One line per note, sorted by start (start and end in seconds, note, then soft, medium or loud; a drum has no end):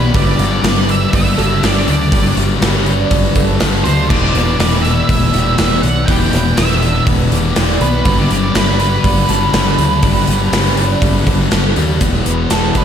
0.00 0.11 B1 medium
0.00 0.13 E2 medium
0.00 0.14 B2 medium
0.00 0.13 D3 medium
0.00 0.13 E3 medium
0.00 0.14 G3 medium
0.00 0.16 B3 medium
0.00 0.63 B3 medium
0.00 0.88 D4 medium
0.00 0.13 E4 medium
0.00 1.37 G4 medium
0.00 0.16 B4 medium
0.14 0.35 G1 loud
0.14 0.63 G2 medium
0.14 0.41 D3 loud
0.14 0.67 G3 medium
0.14 0.39 G3 medium
0.14 0.39 G3 loud
0.14 0.64 A3 loud
0.14 0.41 D4 loud
0.14 0.40 G4 loud
0.14 0.38 B4 loud
0.14 0.90 D5 loud
0.14 kick loud
0.14 open hi-hat medium
0.39 0.60 G1 medium
0.39 0.64 D3 medium
0.39 1.87 G3 medium
0.39 0.66 G3 medium
0.39 0.65 D4 medium
0.39 0.66 G4 medium
0.39 0.67 B4 medium
0.39 open hi-hat medium
0.63 1.05 G1 medium
0.63 1.61 G2 medium
0.63 1.40 D3 medium
0.63 1.38 G3 medium
0.63 0.89 A3 medium
0.63 1.13 B3 medium
0.63 0.89 D4 medium
0.63 0.88 G4 medium
0.63 0.87 B4 medium
0.63 snare loud
0.63 open hi-hat medium
0.88 1.40 G3 medium
0.88 1.12 A3 medium
0.88 1.62 D4 medium
0.88 1.14 D4 medium
0.88 1.14 G4 medium
0.88 1.15 B4 medium
0.88 1.14 E5 loud
0.88 open hi-hat medium
1.13 1.34 G1 medium
1.13 1.39 A3 medium
1.13 2.62 B3 medium
1.13 1.39 D4 medium
1.13 1.38 G4 medium
1.13 1.38 B4 medium
1.13 1.64 E5 loud
1.13 kick loud
1.13 open hi-hat medium
1.37 1.59 G1 medium
1.37 1.63 D3 medium
1.37 1.65 G3 medium
1.37 2.11 G3 medium
1.37 1.61 A3 medium
1.37 1.63 D4 medium
1.37 1.63 G4 medium
1.37 2.62 A4 medium
1.37 1.64 B4 medium
1.37 open hi-hat medium
1.62 1.84 G1 medium
1.62 2.11 G2 medium
1.62 1.89 D3 loud
1.62 1.87 G3 loud
1.62 2.11 A3 medium
1.62 2.87 D4 medium
1.62 1.89 D4 medium
1.62 1.88 G4 medium
1.62 1.87 B4 medium
1.62 1.87 D5 loud
1.62 snare loud
1.62 open hi-hat medium
1.87 2.09 D2 medium
1.87 2.13 D3 medium
1.87 2.12 G3 medium
1.87 2.14 G3 medium
1.87 2.12 D4 medium
1.87 2.13 G4 medium
1.87 2.14 B4 medium
1.87 2.34 D5 medium
1.87 open hi-hat medium
2.11 2.33 G1 medium
2.11 2.60 G2 medium
2.11 2.38 D3 medium
2.11 2.64 G3 medium
2.11 2.36 G3 medium
2.11 2.37 G3 loud
2.11 2.60 A3 medium
2.11 2.39 D4 loud
2.11 2.37 G4 loud
2.11 2.36 B4 loud
2.11 kick loud
2.11 open hi-hat medium
2.36 2.58 G1 medium
2.36 2.62 D3 medium
2.36 3.85 G3 medium
2.36 2.64 G3 medium
2.36 2.62 D4 medium
2.36 2.63 G4 medium
2.36 2.64 B4 medium
2.36 open hi-hat medium
2.61 3.03 G1 medium
2.61 3.58 G2 medium
2.61 3.37 D3 medium
2.61 3.35 G3 medium
2.61 2.87 A3 medium
2.61 3.12 B3 medium
2.61 2.88 D4 medium
2.61 2.86 G4 medium
2.61 2.86 B4 medium
2.61 snare loud
2.61 open hi-hat medium
2.86 3.38 G3 medium
2.86 3.10 A3 medium
2.86 3.61 D4 medium
2.86 3.12 D4 medium
2.86 3.12 G4 medium
2.86 3.13 B4 medium
2.86 open hi-hat medium
3.11 3.32 G1 medium
3.11 3.37 A3 medium
3.11 4.10 B3 medium
3.11 3.38 D4 medium
3.11 3.37 G4 medium
3.11 3.36 B4 medium
3.11 kick loud
3.11 open hi-hat medium
3.35 3.57 G1 medium
3.35 3.60 D3 medium
3.35 3.62 G3 medium
3.35 4.10 G3 medium
3.35 3.59 A3 medium
3.35 3.61 D4 medium
3.35 3.62 G4 medium
3.35 4.11 A4 medium
3.35 3.63 B4 medium
3.35 kick medium
3.35 open hi-hat medium
3.59 3.82 G1 medium
3.59 4.08 G2 medium
3.59 3.86 D3 medium
3.59 3.84 G3 loud
3.59 4.09 A3 medium
3.59 4.85 D4 medium
3.59 3.88 D4 medium
3.59 3.87 G4 medium
3.59 3.85 B4 medium
3.59 snare loud
3.59 open hi-hat medium
3.84 4.06 D2 medium
3.84 4.10 D3 medium
3.84 4.11 G3 medium
3.84 7.36 G3 medium
3.84 4.12 G4 medium
3.84 4.13 B4 medium
3.84 4.10 C5 medium
3.84 open hi-hat medium
3.88 4.11 D4 medium
4.09 4.31 E1 medium
4.09 4.58 E2 loud
4.09 4.36 B2 loud
4.09 4.59 D3 medium
4.09 4.63 E3 medium
4.09 4.34 E3 loud
4.09 4.38 G3 medium
4.09 4.34 B3 medium
4.09 4.37 B3 loud
4.09 4.82 D5 medium
4.09 kick loud
4.09 crash medium
4.13 4.35 B4 loud
4.34 4.56 E1 medium
4.34 4.59 B2 medium
4.34 4.61 E3 medium
4.34 4.61 G3 medium
4.34 4.59 B3 medium
4.34 4.61 B3 medium
4.34 4.62 B4 medium
4.34 open hi-hat medium
4.58 5.01 E1 medium
4.58 5.56 E2 medium
4.58 5.34 B2 medium
4.58 4.85 D3 medium
4.58 5.32 E3 medium
4.58 4.86 G3 medium
4.58 5.09 B3 medium
4.58 4.85 B3 medium
4.58 snare loud
4.58 open hi-hat medium
4.62 4.84 B4 medium
4.82 5.10 G3 medium
4.82 5.11 B3 medium
4.82 5.58 D4 medium
4.82 5.12 B4 medium
4.82 5.85 E5 medium
4.82 open hi-hat medium
4.87 5.08 D3 medium
4.87 5.35 E3 medium
5.09 5.30 E1 medium
5.09 5.34 D3 medium
5.09 5.35 G3 medium
5.09 5.83 B3 medium
5.09 5.34 B3 medium
5.09 5.33 B4 medium
5.09 kick loud
5.09 open hi-hat medium
5.33 5.55 E1 medium
5.33 5.58 B2 medium
5.33 5.57 D3 medium
5.33 5.59 E3 medium
5.33 5.84 E3 medium
5.33 5.59 G3 medium
5.33 5.59 B3 medium
5.33 7.32 G4 medium
5.33 5.60 B4 medium
5.33 open hi-hat medium
5.57 5.80 E1 medium
5.57 6.06 E2 loud
5.57 5.85 B2 loud
5.57 6.06 D3 medium
5.57 5.81 E3 loud
5.57 5.84 G3 medium
5.57 5.82 B3 medium
5.57 6.82 D4 medium
5.57 5.81 B4 medium
5.57 snare loud
5.57 open hi-hat medium
5.82 6.04 B1 medium
5.82 6.09 E3 medium
5.82 6.08 G3 medium
5.82 6.08 B3 medium
5.82 6.09 B4 medium
5.82 6.06 F#5 loud
5.82 open hi-hat medium
5.86 6.07 B2 medium
6.06 6.29 E1 medium
6.06 6.56 E2 medium
6.06 6.33 B2 loud
6.06 6.55 D3 loud
6.06 6.57 E3 medium
6.06 6.31 E3 loud
6.06 6.34 G3 loud
6.06 6.33 B3 medium
6.06 6.33 B3 loud
6.06 6.32 B4 loud
6.06 6.58 G5 loud
6.06 kick loud
6.06 open hi-hat medium
6.32 6.54 E1 medium
6.32 6.57 B2 medium
6.32 6.58 E3 medium
6.32 6.57 G3 medium
6.32 6.58 B3 medium
6.32 6.57 B3 medium
6.32 6.59 B4 medium
6.32 snare soft
6.32 open hi-hat medium
6.57 6.99 E1 medium
6.57 7.54 E2 medium
6.57 7.33 B2 medium
6.57 6.82 D3 medium
6.57 7.31 E3 medium
6.57 6.82 G3 medium
6.57 7.07 B3 medium
6.57 6.82 B3 medium
6.57 6.81 B4 medium
6.57 7.03 E5 medium
6.57 snare loud
6.57 open hi-hat medium
6.81 7.04 D3 medium
6.81 7.31 E3 medium
6.81 7.07 G3 medium
6.81 7.07 B3 medium
6.81 7.56 D4 medium
6.81 7.08 B4 medium
6.81 open hi-hat medium
7.06 7.28 E1 medium
7.06 7.30 D3 medium
7.06 7.31 G3 medium
7.06 7.81 B3 medium
7.06 7.30 B3 medium
7.06 7.29 B4 medium
7.06 kick loud
7.06 open hi-hat medium
7.30 7.52 E1 medium
7.30 7.54 D3 medium
7.30 7.57 E3 medium
7.30 7.82 E3 medium
7.30 7.56 G3 medium
7.30 7.56 B3 medium
7.30 9.29 G4 medium
7.30 7.57 B4 medium
7.30 open hi-hat medium
7.35 7.56 B2 medium
7.55 7.77 E1 medium
7.55 8.04 E2 loud
7.55 7.83 B2 loud
7.55 8.04 D3 medium
7.55 7.80 E3 loud
7.55 7.81 G3 medium
7.55 7.80 B3 medium
7.55 8.80 D4 medium
7.55 7.79 B4 medium
7.55 snare loud
7.55 open hi-hat medium
7.79 8.02 B1 medium
7.79 8.04 E3 medium
7.79 8.04 G3 medium
7.79 8.06 B3 medium
7.79 8.55 B3 medium
7.79 8.06 B4 medium
7.79 8.20 B4 loud
7.79 open hi-hat medium
7.84 8.06 B2 medium
8.04 8.26 G1 medium
8.04 8.55 G2 medium
8.04 8.32 D3 loud
8.04 8.56 G3 loud
8.04 8.30 G3 medium
8.04 8.53 A3 loud
8.04 8.31 D4 loud
8.04 8.30 G4 medium
8.04 8.28 B4 loud
8.04 kick loud
8.04 open hi-hat medium
8.08 8.30 G3 loud
8.18 8.56 D5 loud
8.29 8.51 G1 medium
8.29 9.78 G3 medium
8.29 8.58 G3 medium
8.29 8.54 D4 medium
8.29 8.54 G4 medium
8.29 8.56 B4 medium
8.29 snare soft
8.29 open hi-hat medium
8.34 8.55 D3 medium
8.53 8.97 G1 medium
8.53 9.52 G2 medium
8.53 9.31 D3 medium
8.53 8.80 A3 medium
8.53 9.04 B3 medium
8.53 8.79 D4 medium
8.53 8.79 G4 medium
8.53 8.78 B4 medium
8.53 8.79 B4 medium
8.53 snare loud
8.53 open hi-hat medium
8.58 9.29 G3 medium
8.78 9.31 G3 medium
8.78 9.02 A3 medium
8.78 9.05 D4 medium
8.78 9.53 D4 medium
8.78 9.05 G4 medium
8.78 9.06 B4 medium
8.78 11.48 B4 medium
8.78 open hi-hat medium
9.03 9.25 G1 medium
9.03 9.30 A3 medium
9.03 10.28 B3 medium
9.03 9.30 D4 medium
9.03 9.29 G4 medium
9.03 9.28 B4 medium
9.03 kick loud
9.03 open hi-hat medium
9.29 9.50 G1 medium
9.29 9.54 D3 medium
9.29 9.56 G3 medium
9.29 10.02 G3 medium
9.29 9.53 A3 medium
9.29 9.54 D4 medium
9.29 9.55 G4 medium
9.29 10.53 A4 medium
9.29 9.56 B4 medium
9.29 open hi-hat medium
9.53 9.74 G1 medium
9.53 10.01 G2 medium
9.53 9.80 D3 loud
9.53 9.78 G3 loud
9.53 10.03 A3 medium
9.53 10.77 D4 medium
9.53 9.81 D4 medium
9.53 9.79 G4 medium
9.53 9.78 B4 medium
9.53 snare loud
9.53 open hi-hat medium
9.78 9.99 D2 medium
9.78 10.03 D3 medium
9.78 10.04 G3 medium
9.78 10.02 G3 medium
9.78 10.03 D4 medium
9.78 10.03 G4 medium
9.78 10.04 B4 medium
9.78 open hi-hat medium
10.02 10.24 G1 medium
10.02 10.51 G2 medium
10.02 10.30 D3 medium
10.02 10.53 G3 medium
10.02 10.27 G3 medium
10.02 10.27 G3 loud
10.02 10.51 A3 loud
10.02 10.29 D4 loud
10.02 10.29 G4 loud
10.02 10.27 B4 loud
10.02 kick loud
10.02 open hi-hat medium
10.27 10.49 G1 medium
10.27 10.53 D3 medium
10.27 11.52 G3 medium
10.27 10.54 G3 medium
10.27 10.52 D4 medium
10.27 10.53 G4 medium
10.27 open hi-hat medium
10.52 10.94 G1 medium
10.52 11.51 G2 medium
10.52 11.29 D3 medium
10.52 11.27 G3 medium
10.52 10.78 A3 medium
10.52 11.02 B3 medium
10.52 10.78 D4 medium
10.52 10.77 G4 medium
10.52 10.76 B4 medium
10.52 snare loud
10.52 open hi-hat medium
10.77 11.28 G3 medium
10.77 11.00 A3 medium
10.77 11.52 D4 medium
10.77 11.01 D4 medium
10.77 11.02 G4 medium
10.77 11.03 B4 medium
10.77 open hi-hat medium
11.01 11.23 G1 medium
11.01 11.27 A3 medium
11.01 12.01 B3 medium
11.01 11.26 D4 medium
11.01 11.26 G4 medium
11.01 11.25 B4 medium
11.01 kick loud
11.01 open hi-hat medium
11.26 11.48 G1 medium
11.26 11.53 D3 medium
11.26 11.54 G3 medium
11.26 11.78 G3 medium
11.26 11.50 A3 medium
11.26 11.51 D4 medium
11.26 11.52 G4 medium
11.26 12.01 A4 medium
11.26 11.52 B4 medium
11.26 kick medium
11.26 open hi-hat medium
11.51 11.73 G1 medium
11.51 12.00 G2 medium
11.51 11.79 D3 medium
11.51 11.99 A3 medium
11.51 11.77 D4 medium
11.51 12.02 D4 medium
11.51 11.76 G4 medium
11.51 11.74 B4 medium
11.51 snare loud
11.51 open hi-hat medium
11.55 11.76 G3 loud
11.76 11.97 D#2 medium
11.76 12.02 G3 medium
11.76 12.00 G3 medium
11.76 12.01 D4 medium
11.76 12.00 G4 medium
11.76 11.99 B4 medium
11.76 open hi-hat medium
11.80 12.01 D3 medium
12.00 12.21 E1 medium
12.00 12.51 E2 medium
12.00 12.52 B2 medium
12.00 12.85 D3 medium
12.00 12.85 E3 medium
12.00 12.85 G3 medium
12.00 12.85 B3 medium
12.00 12.26 B3 medium
12.00 12.85 B4 medium
12.00 kick loud
12.00 closed hi-hat medium
12.04 12.53 E3 loud
12.26 12.46 E1 medium
12.26 12.85 B3 medium
12.26 closed hi-hat medium
12.50 12.71 E1 medium
12.50 12.85 E2 medium
12.50 12.85 B2 medium
12.50 12.85 E3 medium
12.50 12.85 G4 medium
12.50 12.77 A4 medium
12.50 snare loud
12.50 closed hi-hat medium
12.75 12.85 E1 medium
12.75 12.85 D4 medium
12.75 12.85 B4 medium
12.75 kick medium
12.75 closed hi-hat medium